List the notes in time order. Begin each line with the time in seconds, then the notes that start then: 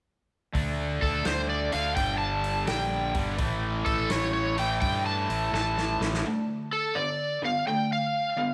0.53 D2 D3 A3 D4, kick, open hi-hat
1.02 D2 A4, kick, open hi-hat
1.25 D2 C5, snare, open hi-hat
1.50 D5
1.72 D2 D3 A3 D4 F5, open hi-hat
1.96 G1 G2 D3 G3 G5, kick, open hi-hat
2.18 A5
2.44 open hi-hat
2.67 A#1 G5, snare, open hi-hat
3.14 G1 G2 D3 G3, kick, open hi-hat
3.38 A1 A2 E3 A3, kick, open hi-hat
3.86 A1 A4, kick, open hi-hat
4.10 A1 C#5, snare, open hi-hat
4.33 C#5
4.57 A2 E3 A3 G5, open hi-hat
4.81 G2 G5, kick, open hi-hat
5.06 A5
5.30 A1, open hi-hat
5.53 A1 A5, snare
5.78 snare
6.00 A1, snare
6.14 snare
6.24 D3 A3
6.73 A4
6.95 D3 B3 D5
7.42 D3 B3 F5
7.67 D3 A3 G5
7.93 F5
8.37 D3 B3